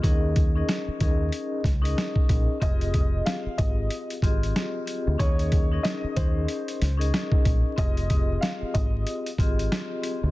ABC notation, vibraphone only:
X:1
M:4/4
L:1/16
Q:"Swing 16ths" 1/4=93
K:Fm
V:1 name="Vibraphone"
[DEABe]3 [DEABe]3 [DEABe]4 z [DEABe]4- [DEABe] | [CFGAe]8- [CFGAe] z [CFGAe]4 [CFGAe]2 | [DEABe]3 [DEABe]3 [DEABe]4 z [DEABe]4- [DEABe] | [CFGAe]8- [CFGAe] z [CFGAe]4 [CFGAe]2 |]